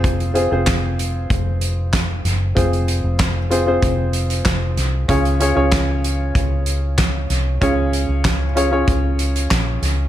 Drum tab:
HH |xxx-x-x-x-x-x-x-|xxx-x-x-x-xxx-x-|xxx-x-x-x-x-x-x-|x-x-x-x-x-xxx-x-|
CP |----x-------x---|----x-------x---|----x-------x---|----x-------x---|
SD |----o-------o-o-|----o-------o-o-|----o-------o-o-|----o-------o-o-|
BD |o---o---o---o---|o---o---o---o---|o---o---o---o---|o---o---o---o---|